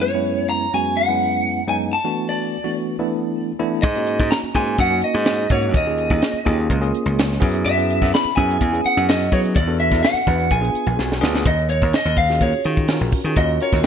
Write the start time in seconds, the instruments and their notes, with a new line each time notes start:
0.02 lead electric guitar C#5
0.14 tine electric piano F#2 G#3 B3 C#4 E4
0.49 lead electric guitar A#5
0.74 tine electric piano F#2 G#3 B3 C#4 F#4, lead electric guitar G#5
0.97 lead electric guitar F#5
1.08 tine electric piano F#2 G#3 B3 C#4 E4
1.68 tine electric piano F#2 G#3 B3 C#4 D#4, lead electric guitar G#5
1.93 lead electric guitar A5
2.04 tine electric piano E3 A3 B3 D4 F#4
2.29 lead electric guitar D5
2.64 tine electric piano E3 A3 B3 D4 F#4
2.99 tine electric piano E3 A3 B3 D4 E4
3.59 tine electric piano E3 A3 B3 D4 E4
3.82 slap bass G#2, lead electric guitar D#5, kick, closed hi-hat
3.95 tine electric piano A#3 C#4 D#4 F#4, closed hi-hat
4.07 closed hi-hat
4.20 slap bass G#2, kick, closed hi-hat
4.31 lead electric guitar A#5, snare, closed hi-hat
4.43 muted slap bass stroke, closed hi-hat
4.55 slap bass G#2, tine electric piano A#3 C#4 D#4 F#4, lead electric guitar G#5, kick, closed hi-hat
4.67 closed hi-hat
4.78 slap bass F#2, lead electric guitar F#5, kick, closed hi-hat
4.90 tine electric piano A#3 C#4 D#4 F#4, closed hi-hat
5.02 lead electric guitar D#5, muted slap bass stroke, closed hi-hat
5.14 slap bass G#2, closed hi-hat
5.25 snare, closed hi-hat
5.38 closed hi-hat
5.50 slap bass G#2, tine electric piano A#3 C#4 D#4 F#4, lead electric guitar C#5, kick, closed hi-hat
5.63 closed hi-hat
5.74 slap bass D#2, lead electric guitar D#5, kick, closed hi-hat
5.86 tine electric piano A#3 C#4 F4 G#4
5.98 closed hi-hat
6.10 slap bass D#2, kick, closed hi-hat
6.22 snare, closed hi-hat
6.33 muted slap bass stroke, closed hi-hat
6.45 slap bass D#2, tine electric piano A#3 C#4 F4 G#4, kick, closed hi-hat
6.59 closed hi-hat
6.70 slap bass C#2, kick, closed hi-hat
6.81 tine electric piano A#3 C#4 F4 G#4, closed hi-hat
6.93 muted slap bass stroke, closed hi-hat
7.06 slap bass C#2, closed hi-hat
7.19 snare, closed hi-hat
7.32 snare
7.40 slap bass F#2, tine electric piano B3 C#4 E4 G#4, kick, open hi-hat
7.55 closed hi-hat
7.65 slap bass F#2, lead electric guitar E5, closed hi-hat
7.77 tine electric piano B3 C#4 E4 G#4, closed hi-hat
7.90 closed hi-hat
8.02 slap bass F#2, kick, snare, closed hi-hat
8.14 lead electric guitar B5, snare, closed hi-hat
8.25 muted slap bass stroke, closed hi-hat
8.36 slap bass F#2, tine electric piano B3 C#4 E4 G#4, lead electric guitar G#5, kick, closed hi-hat
8.51 closed hi-hat
8.61 slap bass E2, kick, closed hi-hat
8.73 tine electric piano B3 C#4 E4 G#4, closed hi-hat
8.85 lead electric guitar F#5, muted slap bass stroke, closed hi-hat
8.97 slap bass F#2, closed hi-hat
9.09 lead electric guitar D#5, snare, closed hi-hat
9.21 closed hi-hat
9.31 slap bass F#3, tine electric piano B3 C#4 E4 G#4, lead electric guitar C#5, kick, closed hi-hat
9.45 closed hi-hat
9.56 slap bass E2, lead electric guitar D5, kick, closed hi-hat
9.67 tine electric piano B3 D4 F#4 A4
9.80 lead electric guitar E5, closed hi-hat
9.92 slap bass E2, kick, snare, closed hi-hat
10.03 lead electric guitar F#5, snare, closed hi-hat
10.14 muted slap bass stroke, closed hi-hat
10.27 slap bass E2, tine electric piano B3 D4 F#4 B4, kick, closed hi-hat
10.40 closed hi-hat
10.50 slap bass A#1, lead electric guitar G#5, kick, closed hi-hat
10.61 tine electric piano B3 D4 F4 G#4, closed hi-hat
10.75 closed hi-hat
10.86 slap bass A#1, closed hi-hat
10.99 slap bass B1, snare
11.12 snare
11.21 slap bass D2, tine electric piano B3 D4 F4 G#4, snare
11.35 snare
11.46 slap bass D#2, lead electric guitar D#5, kick, closed hi-hat
11.58 closed hi-hat
11.70 lead electric guitar C#5, closed hi-hat
11.82 slap bass D#2, kick, closed hi-hat
11.93 lead electric guitar D#5, snare, closed hi-hat
12.05 slap bass D#2, closed hi-hat
12.17 lead electric guitar F5, kick, open hi-hat
12.30 tine electric piano C#4 F4 F#4 G#4, snare, closed hi-hat
12.41 slap bass D#2, lead electric guitar C#5, kick, closed hi-hat
12.53 closed hi-hat
12.64 slap bass D#3, tine electric piano C#4 F4 F#4 G#4, closed hi-hat
12.77 kick, closed hi-hat
12.88 tine electric piano C#4 F4 F#4 A#4, snare, closed hi-hat
13.01 slap bass A#1, closed hi-hat
13.12 kick, open hi-hat
13.24 slap bass D#3, tine electric piano C#4 F4 F#4 G#4, closed hi-hat
13.36 slap bass D#2, tine electric piano C#4 F4 F#4 A#4, lead electric guitar D#5, kick, closed hi-hat
13.49 closed hi-hat
13.60 tine electric piano C#4 F4 F#4 A#4, lead electric guitar C#5, closed hi-hat
13.72 slap bass D#2, kick, snare, closed hi-hat
13.83 closed hi-hat